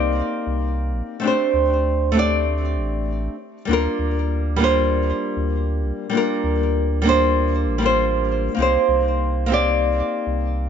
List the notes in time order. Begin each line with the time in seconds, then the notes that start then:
Already playing: C2 A#3 C4 D#4 G4 D5
0.47 C2
0.92 A#1
1.20 A3 C4 D4
1.25 G4 C5
1.53 D2
2.12 A3 C4 D4
2.17 G4 D5
2.76 A1
3.65 D2 G3 A#3 D4
3.71 F4 A#4
3.99 D2
4.56 G3 A#3 D4
4.62 F4 C5
5.37 D2
5.82 C2
6.10 G3 A#3 D4
6.15 F4 A#4
6.44 D2
7.02 G3 A#3 D4
7.07 F4 C5
7.66 A1
7.78 G3 A#3
7.82 D4 F4 C5
8.55 C2 A#3 C4
8.59 D#4 G4 C5
8.88 C2
9.46 A#3 C4 D#4
9.52 G4 D5
10.27 C2